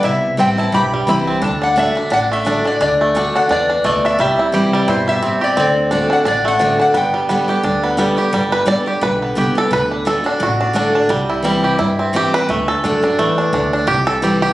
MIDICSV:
0, 0, Header, 1, 5, 480
1, 0, Start_track
1, 0, Key_signature, 1, "major"
1, 0, Tempo, 345821
1, 51, Time_signature, 4, 2, 24, 8
1, 20168, End_track
2, 0, Start_track
2, 0, Title_t, "Resonator guitar played with a steel bar"
2, 0, Program_c, 0, 25
2, 68, Note_on_c, 0, 76, 105
2, 550, Note_off_c, 0, 76, 0
2, 555, Note_on_c, 0, 79, 101
2, 793, Note_off_c, 0, 79, 0
2, 820, Note_on_c, 0, 81, 96
2, 1027, Note_off_c, 0, 81, 0
2, 1033, Note_on_c, 0, 83, 115
2, 1502, Note_off_c, 0, 83, 0
2, 1525, Note_on_c, 0, 83, 115
2, 1992, Note_off_c, 0, 83, 0
2, 1998, Note_on_c, 0, 81, 104
2, 2234, Note_off_c, 0, 81, 0
2, 2267, Note_on_c, 0, 78, 101
2, 2471, Note_off_c, 0, 78, 0
2, 2483, Note_on_c, 0, 76, 101
2, 2961, Note_off_c, 0, 76, 0
2, 2961, Note_on_c, 0, 78, 103
2, 3030, Note_off_c, 0, 78, 0
2, 3232, Note_on_c, 0, 76, 105
2, 3663, Note_off_c, 0, 76, 0
2, 3709, Note_on_c, 0, 74, 87
2, 3898, Note_off_c, 0, 74, 0
2, 3914, Note_on_c, 0, 74, 98
2, 4349, Note_off_c, 0, 74, 0
2, 4665, Note_on_c, 0, 78, 91
2, 4735, Note_off_c, 0, 78, 0
2, 4885, Note_on_c, 0, 74, 94
2, 5315, Note_off_c, 0, 74, 0
2, 5358, Note_on_c, 0, 74, 93
2, 5619, Note_off_c, 0, 74, 0
2, 5630, Note_on_c, 0, 76, 90
2, 5822, Note_off_c, 0, 76, 0
2, 5839, Note_on_c, 0, 76, 93
2, 6271, Note_off_c, 0, 76, 0
2, 6586, Note_on_c, 0, 74, 84
2, 6790, Note_off_c, 0, 74, 0
2, 6793, Note_on_c, 0, 72, 91
2, 7031, Note_off_c, 0, 72, 0
2, 7061, Note_on_c, 0, 76, 98
2, 7496, Note_off_c, 0, 76, 0
2, 7549, Note_on_c, 0, 74, 89
2, 7751, Note_off_c, 0, 74, 0
2, 7767, Note_on_c, 0, 74, 91
2, 8503, Note_on_c, 0, 78, 87
2, 8517, Note_off_c, 0, 74, 0
2, 8688, Note_off_c, 0, 78, 0
2, 8713, Note_on_c, 0, 74, 94
2, 8976, Note_off_c, 0, 74, 0
2, 8991, Note_on_c, 0, 78, 96
2, 9421, Note_off_c, 0, 78, 0
2, 9457, Note_on_c, 0, 78, 88
2, 9664, Note_off_c, 0, 78, 0
2, 9670, Note_on_c, 0, 79, 87
2, 11044, Note_off_c, 0, 79, 0
2, 20168, End_track
3, 0, Start_track
3, 0, Title_t, "Five-string banjo"
3, 0, Program_c, 1, 105
3, 55, Note_on_c, 1, 64, 61
3, 543, Note_on_c, 1, 60, 60
3, 747, Note_off_c, 1, 64, 0
3, 810, Note_on_c, 1, 64, 61
3, 1031, Note_on_c, 1, 67, 69
3, 1231, Note_off_c, 1, 60, 0
3, 1300, Note_on_c, 1, 55, 60
3, 1454, Note_off_c, 1, 64, 0
3, 1511, Note_on_c, 1, 64, 58
3, 1715, Note_off_c, 1, 67, 0
3, 1767, Note_on_c, 1, 60, 55
3, 1939, Note_off_c, 1, 55, 0
3, 1971, Note_off_c, 1, 60, 0
3, 1976, Note_on_c, 1, 62, 64
3, 1981, Note_off_c, 1, 64, 0
3, 2243, Note_off_c, 1, 62, 0
3, 2243, Note_on_c, 1, 62, 53
3, 2459, Note_off_c, 1, 62, 0
3, 2465, Note_on_c, 1, 62, 62
3, 2717, Note_off_c, 1, 62, 0
3, 2734, Note_on_c, 1, 62, 61
3, 2922, Note_off_c, 1, 62, 0
3, 2939, Note_on_c, 1, 62, 70
3, 3214, Note_on_c, 1, 57, 58
3, 3405, Note_off_c, 1, 62, 0
3, 3422, Note_on_c, 1, 62, 56
3, 3667, Note_off_c, 1, 62, 0
3, 3684, Note_on_c, 1, 62, 54
3, 3856, Note_off_c, 1, 57, 0
3, 3882, Note_off_c, 1, 62, 0
3, 3898, Note_on_c, 1, 62, 63
3, 4179, Note_on_c, 1, 57, 55
3, 4375, Note_off_c, 1, 62, 0
3, 4391, Note_on_c, 1, 62, 58
3, 4640, Note_off_c, 1, 62, 0
3, 4657, Note_on_c, 1, 62, 58
3, 4818, Note_off_c, 1, 57, 0
3, 4850, Note_off_c, 1, 62, 0
3, 4867, Note_on_c, 1, 62, 67
3, 5113, Note_off_c, 1, 62, 0
3, 5129, Note_on_c, 1, 62, 58
3, 5339, Note_on_c, 1, 57, 77
3, 5603, Note_off_c, 1, 62, 0
3, 5620, Note_on_c, 1, 62, 58
3, 5814, Note_off_c, 1, 57, 0
3, 5821, Note_off_c, 1, 62, 0
3, 5829, Note_on_c, 1, 55, 81
3, 6095, Note_on_c, 1, 64, 61
3, 6297, Note_on_c, 1, 67, 61
3, 6513, Note_off_c, 1, 55, 0
3, 6570, Note_on_c, 1, 55, 72
3, 6736, Note_off_c, 1, 64, 0
3, 6774, Note_on_c, 1, 64, 69
3, 6987, Note_off_c, 1, 67, 0
3, 7030, Note_off_c, 1, 55, 0
3, 7046, Note_on_c, 1, 55, 62
3, 7254, Note_on_c, 1, 60, 60
3, 7466, Note_off_c, 1, 64, 0
3, 7513, Note_on_c, 1, 67, 59
3, 7691, Note_off_c, 1, 55, 0
3, 7712, Note_off_c, 1, 60, 0
3, 7727, Note_off_c, 1, 67, 0
3, 7729, Note_on_c, 1, 60, 64
3, 8201, Note_on_c, 1, 62, 59
3, 8423, Note_off_c, 1, 60, 0
3, 8458, Note_off_c, 1, 62, 0
3, 8464, Note_on_c, 1, 62, 59
3, 8674, Note_off_c, 1, 62, 0
3, 8679, Note_on_c, 1, 62, 74
3, 8950, Note_on_c, 1, 57, 57
3, 9152, Note_off_c, 1, 62, 0
3, 9158, Note_on_c, 1, 62, 61
3, 9425, Note_off_c, 1, 62, 0
3, 9431, Note_on_c, 1, 62, 59
3, 9603, Note_off_c, 1, 57, 0
3, 9634, Note_on_c, 1, 59, 63
3, 9906, Note_on_c, 1, 55, 59
3, 10106, Note_off_c, 1, 59, 0
3, 10122, Note_on_c, 1, 59, 59
3, 10397, Note_on_c, 1, 67, 60
3, 10561, Note_off_c, 1, 55, 0
3, 10603, Note_off_c, 1, 62, 0
3, 10608, Note_on_c, 1, 62, 67
3, 10820, Note_off_c, 1, 59, 0
3, 10875, Note_on_c, 1, 59, 60
3, 11047, Note_off_c, 1, 67, 0
3, 11083, Note_on_c, 1, 55, 74
3, 11303, Note_off_c, 1, 62, 0
3, 11352, Note_on_c, 1, 67, 57
3, 11526, Note_off_c, 1, 59, 0
3, 11558, Note_off_c, 1, 55, 0
3, 11567, Note_off_c, 1, 67, 0
3, 11575, Note_on_c, 1, 55, 72
3, 11830, Note_on_c, 1, 71, 98
3, 12040, Note_off_c, 1, 71, 0
3, 12046, Note_on_c, 1, 74, 100
3, 12266, Note_off_c, 1, 55, 0
3, 12317, Note_on_c, 1, 67, 58
3, 12525, Note_off_c, 1, 74, 0
3, 12531, Note_on_c, 1, 71, 96
3, 12802, Note_on_c, 1, 59, 57
3, 12967, Note_off_c, 1, 67, 0
3, 13019, Note_on_c, 1, 67, 62
3, 13291, Note_off_c, 1, 71, 0
3, 13296, Note_on_c, 1, 69, 89
3, 13450, Note_off_c, 1, 59, 0
3, 13486, Note_off_c, 1, 69, 0
3, 13495, Note_off_c, 1, 67, 0
3, 13505, Note_on_c, 1, 71, 100
3, 13761, Note_on_c, 1, 62, 52
3, 13945, Note_off_c, 1, 71, 0
3, 13978, Note_on_c, 1, 69, 88
3, 14227, Note_off_c, 1, 62, 0
3, 14238, Note_off_c, 1, 69, 0
3, 14243, Note_on_c, 1, 62, 60
3, 14474, Note_on_c, 1, 66, 76
3, 14704, Note_off_c, 1, 62, 0
3, 14721, Note_on_c, 1, 62, 61
3, 14919, Note_off_c, 1, 62, 0
3, 14935, Note_on_c, 1, 62, 57
3, 15184, Note_off_c, 1, 62, 0
3, 15201, Note_on_c, 1, 62, 56
3, 15409, Note_on_c, 1, 55, 75
3, 15413, Note_off_c, 1, 62, 0
3, 15635, Note_off_c, 1, 66, 0
3, 15678, Note_on_c, 1, 64, 59
3, 15874, Note_off_c, 1, 55, 0
3, 15891, Note_on_c, 1, 55, 60
3, 16159, Note_on_c, 1, 67, 62
3, 16329, Note_off_c, 1, 64, 0
3, 16364, Note_on_c, 1, 64, 66
3, 16586, Note_off_c, 1, 55, 0
3, 16644, Note_on_c, 1, 60, 58
3, 16810, Note_off_c, 1, 67, 0
3, 16881, Note_on_c, 1, 67, 90
3, 17063, Note_off_c, 1, 64, 0
3, 17129, Note_on_c, 1, 71, 107
3, 17142, Note_off_c, 1, 67, 0
3, 17293, Note_off_c, 1, 60, 0
3, 17347, Note_on_c, 1, 57, 75
3, 17572, Note_off_c, 1, 71, 0
3, 17601, Note_on_c, 1, 69, 94
3, 17820, Note_on_c, 1, 62, 56
3, 18034, Note_off_c, 1, 57, 0
3, 18078, Note_off_c, 1, 62, 0
3, 18094, Note_on_c, 1, 62, 60
3, 18303, Note_on_c, 1, 57, 67
3, 18555, Note_off_c, 1, 62, 0
3, 18572, Note_on_c, 1, 62, 56
3, 18719, Note_off_c, 1, 69, 0
3, 18776, Note_off_c, 1, 62, 0
3, 18793, Note_on_c, 1, 62, 57
3, 18993, Note_off_c, 1, 57, 0
3, 19045, Note_off_c, 1, 62, 0
3, 19062, Note_on_c, 1, 62, 56
3, 19259, Note_on_c, 1, 67, 91
3, 19264, Note_off_c, 1, 62, 0
3, 19505, Note_off_c, 1, 67, 0
3, 19527, Note_on_c, 1, 69, 88
3, 19757, Note_on_c, 1, 67, 57
3, 20001, Note_off_c, 1, 67, 0
3, 20018, Note_on_c, 1, 67, 87
3, 20019, Note_off_c, 1, 69, 0
3, 20168, Note_off_c, 1, 67, 0
3, 20168, End_track
4, 0, Start_track
4, 0, Title_t, "Steel-string acoustic guitar"
4, 0, Program_c, 2, 25
4, 40, Note_on_c, 2, 48, 97
4, 516, Note_on_c, 2, 52, 89
4, 530, Note_on_c, 2, 55, 91
4, 537, Note_on_c, 2, 60, 91
4, 548, Note_on_c, 2, 64, 90
4, 780, Note_off_c, 2, 64, 0
4, 781, Note_off_c, 2, 52, 0
4, 787, Note_off_c, 2, 55, 0
4, 791, Note_off_c, 2, 60, 0
4, 797, Note_on_c, 2, 64, 67
4, 825, Note_on_c, 2, 60, 54
4, 963, Note_off_c, 2, 48, 0
4, 1002, Note_off_c, 2, 64, 0
4, 1004, Note_on_c, 2, 43, 89
4, 1016, Note_off_c, 2, 60, 0
4, 1483, Note_on_c, 2, 52, 95
4, 1493, Note_on_c, 2, 55, 98
4, 1501, Note_on_c, 2, 60, 105
4, 1508, Note_on_c, 2, 64, 93
4, 1925, Note_off_c, 2, 43, 0
4, 1946, Note_off_c, 2, 52, 0
4, 1951, Note_off_c, 2, 55, 0
4, 1955, Note_off_c, 2, 60, 0
4, 1958, Note_off_c, 2, 64, 0
4, 1965, Note_on_c, 2, 50, 91
4, 2424, Note_off_c, 2, 50, 0
4, 2440, Note_on_c, 2, 50, 82
4, 2452, Note_on_c, 2, 57, 94
4, 2461, Note_on_c, 2, 62, 93
4, 2473, Note_on_c, 2, 66, 85
4, 2692, Note_off_c, 2, 66, 0
4, 2702, Note_off_c, 2, 50, 0
4, 2708, Note_off_c, 2, 57, 0
4, 2708, Note_on_c, 2, 66, 67
4, 2713, Note_off_c, 2, 62, 0
4, 2738, Note_on_c, 2, 62, 53
4, 2917, Note_off_c, 2, 66, 0
4, 2918, Note_on_c, 2, 45, 89
4, 2932, Note_off_c, 2, 62, 0
4, 3396, Note_on_c, 2, 50, 82
4, 3413, Note_on_c, 2, 57, 84
4, 3419, Note_on_c, 2, 62, 94
4, 3429, Note_on_c, 2, 66, 99
4, 3651, Note_off_c, 2, 66, 0
4, 3660, Note_off_c, 2, 50, 0
4, 3667, Note_on_c, 2, 66, 53
4, 3668, Note_off_c, 2, 57, 0
4, 3671, Note_off_c, 2, 62, 0
4, 3702, Note_on_c, 2, 62, 46
4, 3841, Note_off_c, 2, 45, 0
4, 3877, Note_off_c, 2, 66, 0
4, 3894, Note_off_c, 2, 62, 0
4, 3895, Note_on_c, 2, 50, 87
4, 4351, Note_off_c, 2, 50, 0
4, 4367, Note_on_c, 2, 50, 84
4, 4377, Note_on_c, 2, 57, 80
4, 4389, Note_on_c, 2, 62, 91
4, 4397, Note_on_c, 2, 66, 94
4, 4827, Note_off_c, 2, 50, 0
4, 4832, Note_off_c, 2, 57, 0
4, 4838, Note_off_c, 2, 62, 0
4, 4842, Note_off_c, 2, 66, 0
4, 4846, Note_on_c, 2, 52, 81
4, 5307, Note_off_c, 2, 52, 0
4, 5333, Note_on_c, 2, 47, 88
4, 5790, Note_off_c, 2, 47, 0
4, 5810, Note_on_c, 2, 48, 93
4, 6278, Note_on_c, 2, 52, 79
4, 6296, Note_on_c, 2, 55, 97
4, 6303, Note_on_c, 2, 60, 90
4, 6307, Note_on_c, 2, 64, 90
4, 6727, Note_off_c, 2, 48, 0
4, 6742, Note_off_c, 2, 52, 0
4, 6751, Note_off_c, 2, 55, 0
4, 6755, Note_off_c, 2, 60, 0
4, 6757, Note_off_c, 2, 64, 0
4, 6771, Note_on_c, 2, 47, 86
4, 7229, Note_off_c, 2, 47, 0
4, 7252, Note_on_c, 2, 48, 92
4, 7709, Note_off_c, 2, 48, 0
4, 7730, Note_on_c, 2, 50, 86
4, 8186, Note_off_c, 2, 50, 0
4, 8202, Note_on_c, 2, 50, 82
4, 8212, Note_on_c, 2, 57, 85
4, 8220, Note_on_c, 2, 60, 85
4, 8226, Note_on_c, 2, 66, 98
4, 8664, Note_off_c, 2, 50, 0
4, 8669, Note_off_c, 2, 57, 0
4, 8673, Note_off_c, 2, 60, 0
4, 8676, Note_off_c, 2, 66, 0
4, 8695, Note_on_c, 2, 45, 84
4, 9152, Note_on_c, 2, 50, 90
4, 9168, Note_on_c, 2, 57, 89
4, 9176, Note_on_c, 2, 60, 89
4, 9187, Note_on_c, 2, 66, 95
4, 9609, Note_off_c, 2, 45, 0
4, 9619, Note_off_c, 2, 50, 0
4, 9627, Note_off_c, 2, 57, 0
4, 9631, Note_off_c, 2, 60, 0
4, 9636, Note_off_c, 2, 66, 0
4, 9639, Note_on_c, 2, 43, 99
4, 10118, Note_on_c, 2, 50, 83
4, 10132, Note_on_c, 2, 55, 88
4, 10140, Note_on_c, 2, 59, 90
4, 10149, Note_on_c, 2, 67, 96
4, 10363, Note_off_c, 2, 67, 0
4, 10380, Note_off_c, 2, 50, 0
4, 10380, Note_on_c, 2, 67, 69
4, 10387, Note_off_c, 2, 55, 0
4, 10391, Note_off_c, 2, 59, 0
4, 10416, Note_on_c, 2, 59, 55
4, 10561, Note_off_c, 2, 43, 0
4, 10592, Note_off_c, 2, 67, 0
4, 10597, Note_on_c, 2, 50, 87
4, 10610, Note_off_c, 2, 59, 0
4, 11048, Note_off_c, 2, 50, 0
4, 11064, Note_on_c, 2, 50, 91
4, 11076, Note_on_c, 2, 55, 91
4, 11084, Note_on_c, 2, 59, 99
4, 11093, Note_on_c, 2, 67, 100
4, 11318, Note_off_c, 2, 67, 0
4, 11333, Note_off_c, 2, 50, 0
4, 11335, Note_on_c, 2, 67, 58
4, 11339, Note_off_c, 2, 55, 0
4, 11343, Note_off_c, 2, 59, 0
4, 11368, Note_on_c, 2, 59, 48
4, 11550, Note_off_c, 2, 67, 0
4, 11558, Note_on_c, 2, 43, 88
4, 11566, Note_off_c, 2, 59, 0
4, 12015, Note_on_c, 2, 50, 90
4, 12027, Note_on_c, 2, 55, 84
4, 12038, Note_on_c, 2, 59, 91
4, 12043, Note_on_c, 2, 67, 86
4, 12283, Note_off_c, 2, 67, 0
4, 12289, Note_off_c, 2, 50, 0
4, 12295, Note_off_c, 2, 55, 0
4, 12300, Note_on_c, 2, 67, 61
4, 12301, Note_off_c, 2, 59, 0
4, 12328, Note_on_c, 2, 59, 50
4, 12481, Note_off_c, 2, 43, 0
4, 12511, Note_on_c, 2, 50, 89
4, 12512, Note_off_c, 2, 67, 0
4, 12526, Note_off_c, 2, 59, 0
4, 12966, Note_off_c, 2, 50, 0
4, 12983, Note_on_c, 2, 50, 81
4, 12995, Note_on_c, 2, 55, 88
4, 13004, Note_on_c, 2, 59, 100
4, 13010, Note_on_c, 2, 67, 98
4, 13242, Note_off_c, 2, 67, 0
4, 13253, Note_off_c, 2, 50, 0
4, 13258, Note_on_c, 2, 67, 57
4, 13259, Note_off_c, 2, 55, 0
4, 13264, Note_off_c, 2, 59, 0
4, 13286, Note_on_c, 2, 59, 50
4, 13472, Note_off_c, 2, 67, 0
4, 13473, Note_on_c, 2, 50, 87
4, 13486, Note_off_c, 2, 59, 0
4, 13933, Note_off_c, 2, 50, 0
4, 13950, Note_on_c, 2, 50, 79
4, 13964, Note_on_c, 2, 57, 86
4, 13973, Note_on_c, 2, 62, 87
4, 13984, Note_on_c, 2, 66, 85
4, 14197, Note_off_c, 2, 66, 0
4, 14214, Note_on_c, 2, 66, 65
4, 14217, Note_off_c, 2, 50, 0
4, 14224, Note_off_c, 2, 57, 0
4, 14225, Note_off_c, 2, 62, 0
4, 14242, Note_on_c, 2, 62, 57
4, 14430, Note_off_c, 2, 66, 0
4, 14432, Note_on_c, 2, 45, 90
4, 14444, Note_off_c, 2, 62, 0
4, 14899, Note_on_c, 2, 50, 85
4, 14913, Note_on_c, 2, 57, 94
4, 14925, Note_on_c, 2, 62, 92
4, 14934, Note_on_c, 2, 66, 101
4, 15360, Note_off_c, 2, 45, 0
4, 15374, Note_off_c, 2, 50, 0
4, 15381, Note_off_c, 2, 57, 0
4, 15387, Note_off_c, 2, 62, 0
4, 15391, Note_off_c, 2, 66, 0
4, 15394, Note_on_c, 2, 48, 85
4, 15858, Note_on_c, 2, 52, 85
4, 15877, Note_on_c, 2, 55, 93
4, 15882, Note_on_c, 2, 60, 91
4, 15889, Note_on_c, 2, 64, 97
4, 16321, Note_off_c, 2, 48, 0
4, 16334, Note_off_c, 2, 52, 0
4, 16344, Note_off_c, 2, 55, 0
4, 16346, Note_off_c, 2, 60, 0
4, 16350, Note_off_c, 2, 64, 0
4, 16360, Note_on_c, 2, 43, 86
4, 16836, Note_on_c, 2, 52, 77
4, 16844, Note_on_c, 2, 55, 92
4, 16856, Note_on_c, 2, 60, 90
4, 16868, Note_on_c, 2, 64, 90
4, 17284, Note_off_c, 2, 43, 0
4, 17304, Note_off_c, 2, 52, 0
4, 17307, Note_off_c, 2, 55, 0
4, 17314, Note_off_c, 2, 60, 0
4, 17320, Note_off_c, 2, 64, 0
4, 17331, Note_on_c, 2, 50, 87
4, 17801, Note_off_c, 2, 50, 0
4, 17817, Note_on_c, 2, 50, 85
4, 17830, Note_on_c, 2, 57, 84
4, 17838, Note_on_c, 2, 62, 88
4, 17847, Note_on_c, 2, 66, 89
4, 18062, Note_off_c, 2, 66, 0
4, 18072, Note_off_c, 2, 50, 0
4, 18078, Note_off_c, 2, 57, 0
4, 18078, Note_on_c, 2, 66, 65
4, 18082, Note_off_c, 2, 62, 0
4, 18110, Note_on_c, 2, 62, 53
4, 18284, Note_off_c, 2, 66, 0
4, 18300, Note_off_c, 2, 62, 0
4, 18307, Note_on_c, 2, 52, 79
4, 18759, Note_off_c, 2, 52, 0
4, 18776, Note_on_c, 2, 50, 83
4, 19234, Note_off_c, 2, 50, 0
4, 19251, Note_on_c, 2, 48, 89
4, 19740, Note_on_c, 2, 52, 91
4, 19746, Note_on_c, 2, 55, 79
4, 19757, Note_on_c, 2, 60, 89
4, 19766, Note_on_c, 2, 64, 90
4, 20168, Note_off_c, 2, 48, 0
4, 20168, Note_off_c, 2, 52, 0
4, 20168, Note_off_c, 2, 55, 0
4, 20168, Note_off_c, 2, 60, 0
4, 20168, Note_off_c, 2, 64, 0
4, 20168, End_track
5, 0, Start_track
5, 0, Title_t, "Upright bass"
5, 0, Program_c, 3, 32
5, 47, Note_on_c, 3, 36, 94
5, 376, Note_off_c, 3, 36, 0
5, 531, Note_on_c, 3, 33, 81
5, 939, Note_off_c, 3, 33, 0
5, 1003, Note_on_c, 3, 35, 90
5, 1415, Note_off_c, 3, 35, 0
5, 1483, Note_on_c, 3, 36, 88
5, 1894, Note_off_c, 3, 36, 0
5, 1966, Note_on_c, 3, 38, 95
5, 2623, Note_off_c, 3, 38, 0
5, 2927, Note_on_c, 3, 33, 83
5, 3584, Note_off_c, 3, 33, 0
5, 3897, Note_on_c, 3, 38, 91
5, 4550, Note_off_c, 3, 38, 0
5, 4856, Note_on_c, 3, 40, 80
5, 5261, Note_off_c, 3, 40, 0
5, 5339, Note_on_c, 3, 38, 91
5, 5743, Note_off_c, 3, 38, 0
5, 5818, Note_on_c, 3, 36, 92
5, 6470, Note_off_c, 3, 36, 0
5, 6776, Note_on_c, 3, 43, 83
5, 7429, Note_off_c, 3, 43, 0
5, 7730, Note_on_c, 3, 38, 93
5, 8385, Note_off_c, 3, 38, 0
5, 8683, Note_on_c, 3, 33, 86
5, 9340, Note_off_c, 3, 33, 0
5, 9640, Note_on_c, 3, 31, 91
5, 10299, Note_off_c, 3, 31, 0
5, 10599, Note_on_c, 3, 38, 81
5, 11258, Note_off_c, 3, 38, 0
5, 11556, Note_on_c, 3, 31, 88
5, 12216, Note_off_c, 3, 31, 0
5, 12521, Note_on_c, 3, 35, 79
5, 12933, Note_off_c, 3, 35, 0
5, 12999, Note_on_c, 3, 36, 84
5, 13412, Note_off_c, 3, 36, 0
5, 13477, Note_on_c, 3, 38, 85
5, 14138, Note_off_c, 3, 38, 0
5, 14441, Note_on_c, 3, 33, 83
5, 15100, Note_off_c, 3, 33, 0
5, 15403, Note_on_c, 3, 36, 90
5, 16062, Note_off_c, 3, 36, 0
5, 16377, Note_on_c, 3, 43, 84
5, 17032, Note_off_c, 3, 43, 0
5, 17337, Note_on_c, 3, 38, 98
5, 17664, Note_off_c, 3, 38, 0
5, 17818, Note_on_c, 3, 42, 86
5, 18224, Note_off_c, 3, 42, 0
5, 18305, Note_on_c, 3, 40, 80
5, 18708, Note_off_c, 3, 40, 0
5, 18775, Note_on_c, 3, 38, 90
5, 19183, Note_off_c, 3, 38, 0
5, 19248, Note_on_c, 3, 36, 92
5, 19906, Note_off_c, 3, 36, 0
5, 20168, End_track
0, 0, End_of_file